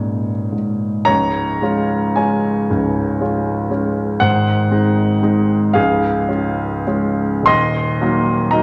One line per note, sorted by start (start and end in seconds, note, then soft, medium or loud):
0.00 1.04 C#2 soft
0.00 0.52 G#2 soft
0.00 1.12 A#2 soft
0.00 0.53 C#5 medium
0.52 1.08 G#2 soft
1.05 1.61 C#1 soft
1.05 1.62 C#2 soft
1.05 2.14 C#5 medium
1.05 2.17 A#5 medium
1.62 2.14 G#3 soft
1.62 2.15 C#4 soft
1.62 2.15 F4 soft
2.16 2.68 G#3 soft
2.16 2.68 C#4 soft
2.16 2.68 F4 soft
2.16 4.19 C#5 soft
2.16 4.22 G#5 medium
2.70 3.22 C#1 soft
2.70 3.22 C#2 soft
3.20 3.68 G#3 soft
3.20 3.69 C#4 soft
3.20 3.69 F4 soft
3.71 4.18 G#3 soft
3.71 4.19 C#4 soft
3.71 4.19 F4 soft
4.20 4.72 G#1 soft
4.20 4.72 G#2 medium
4.20 5.72 C5 medium
4.20 5.75 F#5 medium
4.71 5.20 G#3 soft
4.71 5.20 C4 soft
4.71 5.21 D#4 soft
5.23 5.72 G#3 soft
5.23 5.72 C4 soft
5.23 5.72 D#4 soft
5.74 6.29 C#1 soft
5.74 6.28 C#2 medium
5.74 7.42 G#4 medium
5.74 7.46 F5 medium
6.28 6.84 G#3 soft
6.28 6.84 C#4 soft
6.28 6.84 F4 soft
6.87 7.43 G#3 soft
6.87 7.43 C#4 soft
6.87 7.43 F4 soft
7.43 7.99 D#1 medium
7.43 8.53 C6 medium
7.47 8.01 D#2 medium
7.47 8.50 D#5 medium
8.01 8.49 F#3 soft
8.01 8.49 A#3 soft
8.01 8.50 D#4 soft
8.51 8.63 F#3 soft
8.51 8.63 A#3 soft
8.51 8.63 D#4 soft
8.51 8.63 D#5 medium
8.51 8.63 A#5 medium